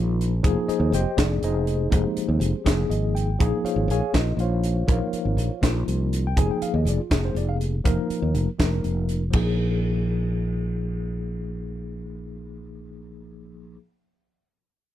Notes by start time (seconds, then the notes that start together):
Already playing: A#1 F3 A#3 D#4 F4
0.21 closed hi-hat
0.43 F1 F3 A#3 D#4 G#4, kick, closed hi-hat
0.68 D#4 G#4 C5 D#5, muted fretless electric bass stroke, closed hi-hat
0.80 D#2
0.92 F1 G4 C5 D#5 G5, closed hi-hat
1.17 F1 F3 A#3 D4 D#4 G#4 D5, kick, snare, closed hi-hat
1.42 F1 D#4 G#4 C5 D#5, closed hi-hat
1.67 closed hi-hat
1.90 F1 F3 G#3 A#3 C4 D#4 G4 G#4 C5, kick, closed hi-hat
2.17 muted fretless electric bass stroke, closed hi-hat
2.29 D#2
2.40 F1, closed hi-hat
2.65 F1 F3 A#3 D#4 G#4, kick, snare, closed hi-hat
2.90 G#1 D#5, closed hi-hat
3.15 G5, closed hi-hat
3.39 A#1 F3 A#3 D#4 G#4, kick, closed hi-hat
3.64 F4 C5 C#5 F5, muted fretless electric bass stroke, closed hi-hat
3.76 G#1
3.88 A#1 G#4 C#5 F5 G#5, closed hi-hat
4.13 A#1 F3 A#3 D#4 F4 D#5, kick, snare, closed hi-hat
4.37 A#1 F4 C5 F5, closed hi-hat
4.41 C#5
4.64 closed hi-hat
4.87 A#1 F3 A#3 D#4 A#4, kick, closed hi-hat
4.92 F4 C5 C#5 F5
5.13 muted fretless electric bass stroke, closed hi-hat
5.25 G#1
5.37 A#1, closed hi-hat
5.62 A#1 F3 A#3 D#4 F4, kick, snare, closed hi-hat
5.88 C2, closed hi-hat
6.13 closed hi-hat
6.27 G5
6.36 F1 F3 A#3 D#4 G#4 G#5, kick, closed hi-hat
6.51 G5
6.62 F5, muted fretless electric bass stroke, closed hi-hat
6.74 D#2 D#5
6.85 F1 D5, closed hi-hat
7.00 F4
7.10 F1 F3 A#3 D#4 G#4, kick, snare, closed hi-hat
7.25 C5
7.35 F1 D5, closed hi-hat
7.49 F5
7.61 closed hi-hat
7.84 F1 F3 A#3 D#4 A#4, kick, closed hi-hat
8.10 muted fretless electric bass stroke, closed hi-hat
8.22 D#2
8.34 F1, closed hi-hat
8.58 F1 F3 A#3 D#4 A#4, kick, snare, closed hi-hat
8.84 F1, closed hi-hat
9.09 closed hi-hat
9.30 A#1 F3 A#3 D#4, kick, crash
9.36 G#4